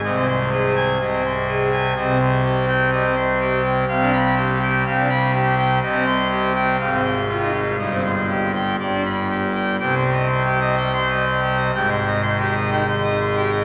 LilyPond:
<<
  \new Staff \with { instrumentName = "Pipe organ" } { \time 4/4 \key aes \major \tempo 4 = 124 ees''8 c'''8 aes'8 aes''8 ees''8 c'''8 aes'8 aes''8 | \key c \minor ees''8 c'''8 g'8 g''8 ees''8 c'''8 g'8 g''8 | f''8 b''8 g'8 g''8 f''8 b''8 g'8 g''8 | ees''8 c'''8 g'8 g''8 f''8 c'''8 f'8 f''8 |
ees''8 c'''8 g'8 g''8 d''8 b''8 g'8 g''8 | \tuplet 3/2 { g''8 c'''8 ees''8 c'''8 g'8 ees''8 g''8 c'''8 ees''8 c'''8 g'8 ees''8 } | \tuplet 3/2 { g''8 c'''8 ees''8 c'''8 g'8 ees''8 g''8 c'''8 ees''8 c'''8 g'8 ees''8 } | }
  \new Staff \with { instrumentName = "Pipe organ" } { \clef bass \time 4/4 \key aes \major << { c16 c'16 r4. c16 c'16 r4. | \key c \minor c16 c'16 r4. g16 c'16 r4. | c16 d'16 r4. c16 d'16 r4. | c16 c'16 r4. aes,16 c'16 r8. ees'16 r8 |
g,16 c'16 r4. g,16 d'16 r4. | c2 g16 r4. r16 | aes,2 ees16 r4. r16 | } \\ { c,2 c,2 | c,1 | c,2 c,2 | c,2 aes,,2 |
g,,2 g,,2 | c,1 | aes,,1 | } >> }
>>